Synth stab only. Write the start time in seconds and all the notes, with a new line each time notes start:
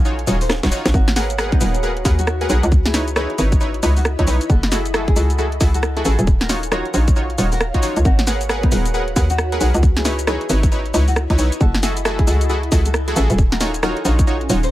0.05 D#4 F4 F#4 C#5
0.27 D#4 F4 F#4 C#5
0.63 D#4 F4 F#4 C#5
0.72 D#4 F4 F#4 C#5
1.16 G#4 A#4 B4 F#5
1.38 G#4 A#4 B4 F#5
1.61 G#4 A#4 B4 F#5
1.83 G#4 A#4 B4 F#5
2.05 G#4 A#4 B4 F#5
2.41 G#4 A#4 B4 F#5
2.50 G#4 A#4 B4 F#5
2.94 D#4 E4 B4 C#5
3.16 D#4 E4 B4 C#5
3.38 D#4 E4 B4 C#5
3.61 D#4 E4 B4 C#5
3.83 D#4 E4 B4 C#5
4.19 D#4 E4 B4 C#5
4.27 D#4 E4 B4 C#5
4.72 E4 F#4 G#4 A4
4.94 E4 F#4 G#4 A4
5.16 E4 F#4 G#4 A4
5.38 E4 F#4 G#4 A4
5.61 E4 F#4 G#4 A4
5.97 E4 F#4 G#4 A4
6.05 E4 F#4 G#4 A4
6.49 D#4 F4 F#4 C#5
6.72 D#4 F4 F#4 C#5
6.94 D#4 F4 F#4 C#5
7.16 D#4 F4 F#4 C#5
7.38 D#4 F4 F#4 C#5
7.74 D#4 F4 F#4 C#5
7.83 D#4 F4 F#4 C#5
8.27 G#4 A#4 B4 F#5
8.49 G#4 A#4 B4 F#5
8.72 G#4 A#4 B4 F#5
8.94 G#4 A#4 B4 F#5
9.16 G#4 A#4 B4 F#5
9.52 G#4 A#4 B4 F#5
9.61 G#4 A#4 B4 F#5
10.05 D#4 E4 B4 C#5
10.27 D#4 E4 B4 C#5
10.50 D#4 E4 B4 C#5
10.72 D#4 E4 B4 C#5
10.94 D#4 E4 B4 C#5
11.30 D#4 E4 B4 C#5
11.38 D#4 E4 B4 C#5
11.83 E4 F#4 G#4 A4
12.05 E4 F#4 G#4 A4
12.27 E4 F#4 G#4 A4
12.49 E4 F#4 G#4 A4
12.72 E4 F#4 G#4 A4
13.08 E4 F#4 G#4 A4
13.16 E4 F#4 G#4 A4
13.61 D#4 F4 F#4 C#5
13.83 D#4 F4 F#4 C#5
14.05 D#4 F4 F#4 C#5
14.27 D#4 F4 F#4 C#5
14.50 D#4 F4 F#4 C#5